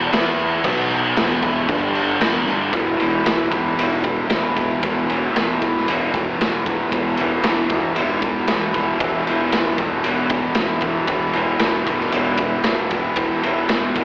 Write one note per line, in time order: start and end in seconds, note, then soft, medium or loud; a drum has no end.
0.00 0.11 E2 medium
0.00 0.11 B2 loud
0.00 0.10 E3 loud
0.11 0.62 E2 loud
0.11 0.63 E3 loud
0.11 0.64 B3 loud
0.11 0.64 E4 loud
0.11 snare loud
0.11 crash medium
0.39 crash medium
0.64 1.13 B1 medium
0.64 1.16 B2 medium
0.64 1.16 F#3 medium
0.64 1.17 B3 medium
0.64 kick loud
0.64 crash medium
0.90 crash medium
1.17 1.66 E1 medium
1.17 1.68 E2 loud
1.17 1.69 B2 medium
1.17 1.69 E3 loud
1.17 snare loud
1.17 crash medium
1.43 kick medium
1.43 crash medium
1.69 2.18 G1 loud
1.69 2.20 G2 loud
1.69 2.21 D3 loud
1.69 2.21 G3 loud
1.69 kick loud
1.69 crash medium
1.95 crash medium
2.21 2.47 E1 medium
2.21 2.46 E2 loud
2.21 2.46 B2 loud
2.21 2.48 E3 loud
2.21 snare loud
2.21 crash medium
2.46 2.73 G1 medium
2.46 2.72 G2 loud
2.46 2.72 D3 medium
2.46 2.73 G3 loud
2.46 crash medium
2.72 2.94 E1 medium
2.72 3.24 E2 medium
2.72 3.00 B2 medium
2.72 kick loud
2.72 ride medium
2.77 2.97 E3 medium
2.97 3.28 E3 medium
2.97 ride medium
3.02 3.21 E1 loud
3.02 3.25 B2 medium
3.24 3.47 E1 medium
3.24 3.76 E2 medium
3.24 3.54 B2 medium
3.24 snare loud
3.24 ride loud
3.28 3.50 E3 loud
3.51 3.72 E1 medium
3.51 3.80 E3 medium
3.51 kick medium
3.51 ride medium
3.55 3.77 B2 medium
3.76 4.19 E1 medium
3.76 4.28 E2 medium
3.76 4.06 B2 medium
3.76 ride medium
3.80 4.03 E3 loud
4.03 4.32 E3 medium
4.03 kick medium
4.03 ride medium
4.07 4.29 B2 soft
4.28 4.80 E2 medium
4.28 4.57 B2 medium
4.28 snare loud
4.28 ride medium
4.32 4.72 E1 medium
4.32 4.54 E3 medium
4.55 4.84 E3 medium
4.55 kick medium
4.55 ride medium
4.59 4.81 B2 medium
4.80 5.04 E1 medium
4.80 5.31 E2 medium
4.80 5.09 B2 medium
4.80 kick loud
4.80 ride loud
4.84 5.06 E3 medium
5.06 5.32 B2 medium
5.06 5.36 E3 medium
5.06 ride medium
5.10 5.30 E1 medium
5.31 5.86 E2 medium
5.31 5.63 B2 loud
5.36 5.56 E1 medium
5.36 5.59 E3 loud
5.36 snare loud
5.36 ride medium
5.59 5.82 E1 medium
5.59 5.90 E3 medium
5.59 kick medium
5.59 ride medium
5.64 5.88 B2 medium
5.77 snare soft
5.87 6.28 E1 loud
5.87 6.38 E2 loud
5.87 6.15 B2 medium
5.87 6.11 E3 loud
5.87 ride medium
6.12 6.43 E3 medium
6.12 kick medium
6.12 ride medium
6.17 6.40 B2 medium
6.39 6.81 E1 medium
6.39 6.89 E2 medium
6.39 6.67 B2 medium
6.39 snare loud
6.39 ride medium
6.43 6.63 E3 medium
6.64 6.93 E3 medium
6.64 kick medium
6.64 ride medium
6.68 6.90 B2 medium
6.89 7.13 E1 loud
6.89 7.42 E2 medium
6.89 7.20 B2 medium
6.89 kick loud
6.89 ride medium
6.94 7.16 E3 medium
7.16 7.47 E3 medium
7.16 ride medium
7.21 7.40 E1 medium
7.21 7.45 B2 medium
7.43 7.94 E2 medium
7.43 7.72 B2 medium
7.43 snare loud
7.43 ride medium
7.47 7.66 E1 medium
7.47 7.68 E3 loud
7.68 7.91 E1 medium
7.68 7.99 E3 medium
7.68 kick medium
7.68 ride medium
7.73 7.96 B2 medium
7.95 8.48 E2 medium
7.95 8.24 B2 medium
7.95 ride medium
7.99 8.38 E1 loud
7.99 8.21 E3 loud
8.21 8.49 B2 medium
8.21 8.52 E3 medium
8.21 kick medium
8.21 ride medium
8.47 8.90 E1 medium
8.47 8.98 E2 medium
8.47 8.77 B2 medium
8.47 snare loud
8.47 ride loud
8.52 8.73 E3 medium
8.74 9.03 E3 medium
8.74 kick medium
8.74 ride medium
8.79 9.01 B2 medium
8.99 9.21 E1 loud
8.99 9.50 E2 medium
8.99 9.28 B2 medium
8.99 kick loud
8.99 ride loud
9.04 9.24 E3 medium
9.24 9.55 E3 medium
9.24 ride medium
9.29 9.49 E1 medium
9.29 9.52 B2 medium
9.51 9.74 E1 medium
9.51 10.04 E2 medium
9.51 9.81 B2 loud
9.51 snare loud
9.51 ride medium
9.55 9.78 E3 medium
9.78 9.99 E1 medium
9.78 10.08 E3 medium
9.78 kick medium
9.78 ride medium
9.83 10.05 B2 medium
10.04 10.47 E1 loud
10.04 10.55 E2 medium
10.04 10.35 B2 loud
10.04 ride medium
10.09 10.31 E3 loud
10.29 10.61 E3 medium
10.29 kick medium
10.29 ride medium
10.36 10.57 B2 medium
10.55 10.98 E1 medium
10.55 11.08 E2 medium
10.55 10.87 B2 medium
10.55 snare loud
10.55 ride medium
10.61 10.82 E3 medium
10.81 11.13 E3 medium
10.81 kick medium
10.81 ride medium
10.88 11.10 B2 medium
11.07 11.29 E1 medium
11.07 11.60 E2 medium
11.07 11.38 B2 medium
11.07 kick loud
11.07 ride medium
11.13 11.35 E3 medium
11.33 11.56 E1 medium
11.33 11.65 E3 medium
11.33 ride medium
11.39 11.61 B2 medium
11.59 11.81 E1 medium
11.59 12.12 E2 medium
11.59 11.89 B2 medium
11.59 snare loud
11.59 ride medium
11.65 11.86 E3 medium
11.86 12.07 E1 medium
11.86 12.16 E3 medium
11.86 kick medium
11.86 ride medium
11.90 12.13 B2 medium
12.00 snare soft
12.12 12.54 E1 loud
12.12 12.64 E2 medium
12.12 12.41 B2 medium
12.12 12.37 E3 medium
12.12 ride medium
12.37 12.68 E3 medium
12.37 kick medium
12.37 ride medium
12.42 12.66 B2 soft
12.64 13.06 E1 medium
12.64 13.17 E2 medium
12.64 12.94 B2 medium
12.64 snare loud
12.64 ride medium
12.69 12.91 E3 medium
12.91 13.21 E3 medium
12.91 kick medium
12.91 ride medium
12.96 13.19 B2 medium
13.16 13.37 E1 loud
13.16 13.69 E2 medium
13.16 kick loud
13.16 ride loud
13.20 13.47 B2 medium
13.20 13.43 E3 medium
13.43 13.65 E1 loud
13.43 13.73 E3 medium
13.43 ride medium
13.48 13.70 B2 medium
13.69 13.90 E1 medium
13.69 14.04 E2 medium
13.69 13.99 B2 loud
13.69 snare loud
13.69 ride loud
13.74 13.95 E3 loud
13.95 14.04 E1 medium
13.95 14.04 E3 medium
13.95 kick medium
13.95 ride medium
14.00 14.04 B2 medium